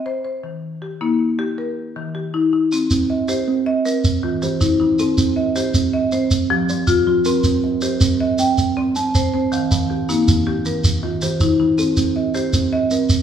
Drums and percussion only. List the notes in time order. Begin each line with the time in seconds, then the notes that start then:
2.72 shekere
2.91 shekere
3.28 shekere
3.86 shekere
4.04 shekere
4.42 shekere
4.61 shekere
4.99 shekere
5.18 shekere
5.56 shekere
5.74 shekere
6.12 shekere
6.31 shekere
6.69 shekere
6.87 shekere
7.25 shekere
7.44 shekere
7.81 shekere
8.01 shekere
8.38 shekere
8.58 shekere
8.96 shekere
9.15 shekere
9.52 shekere
9.71 shekere
10.09 shekere
10.28 shekere
10.65 shekere
10.84 shekere
11.22 shekere
11.40 shekere
11.78 shekere
11.97 shekere
12.35 shekere
12.53 shekere
12.91 shekere
13.09 shekere